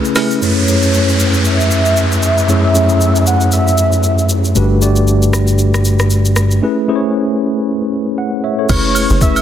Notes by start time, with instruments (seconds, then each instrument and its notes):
Already playing: analog synth pad C#3 A3 G#4, tine electric piano A3 C#4 E4 G#4 B4
0.05 shaker
0.16 tine electric piano A3 C#4 E4 G#4 B4, cross-stick, snare, open hi-hat, high agogo, shaker
0.31 shaker
0.41 tine electric piano F#2 A3 C#4 E4 G#4 B4, soft synth lead C#5, downlifter, shaker
0.67 tine electric piano F#2 A3 C#4 E4 G#4 C#5, shaker
0.82 shaker
0.94 shaker
1.09 shaker
1.20 shaker
1.34 shaker
1.45 soft synth lead E5, shaker
1.61 shaker
1.71 shaker
1.86 shaker
1.97 shaker
2.12 shaker
2.23 shaker
2.38 shaker
2.48 tine electric piano F#2 A3 C#4 E4 G#4 C#5, soft synth lead E5, shaker
2.74 tine electric piano F#2 A3 C#4 E4 G#4 C#5, shaker
2.89 shaker
3.01 shaker
3.16 shaker
3.27 soft synth lead F#5, shaker
3.41 shaker
3.52 soft synth lead E5, shaker
3.68 shaker
3.78 shaker
3.92 shaker
4.03 shaker
4.19 shaker
4.29 shaker
4.44 shaker
4.55 fingered electric bass G1, tine electric piano A3 D4 F#4 G4 B4, shaker
4.81 tine electric piano A3 D4 F#4 G4 D5, shaker
4.96 shaker
5.08 shaker
5.22 shaker
5.33 cross-stick, shaker
5.47 shaker
5.59 shaker
5.74 cross-stick, shaker
5.85 shaker
5.99 cross-stick, shaker
6.10 shaker
6.25 shaker
6.36 cross-stick, shaker
6.51 shaker
6.62 tine electric piano A3 C#4 E4 G#4 B4
6.88 tine electric piano A3 C#4 E4 G#4 C5
6.96 tine electric piano C#5
8.18 tine electric piano F#5
8.44 tine electric piano C#5 E5
8.59 tine electric piano A4 C#5
8.69 log drum bass F#1, tine electric piano E4 B4, soft synth lead C#5, kick, crash, high agogo, shaker
8.95 open hi-hat, high agogo, shaker
9.10 log drum bass F#1, shaker
9.21 soft synth lead E5, kick, shaker
9.36 high agogo, shaker